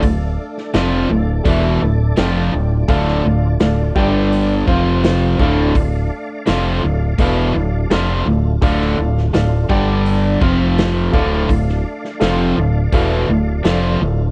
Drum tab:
HH |o---o---o---o---|o---o---o---o---|o---o---o---o---|o---o---o---o---|
SD |---oo-------o---|-o--o-------o---|----o-------o---|-o-oo-------o---|
BD |o-------o-------|o-----o---o---o-|o-------o-------|o-----o---o---o-|

HH |o---o---o---o---|
SD |-o-oo-------o---|
BD |o-------o-------|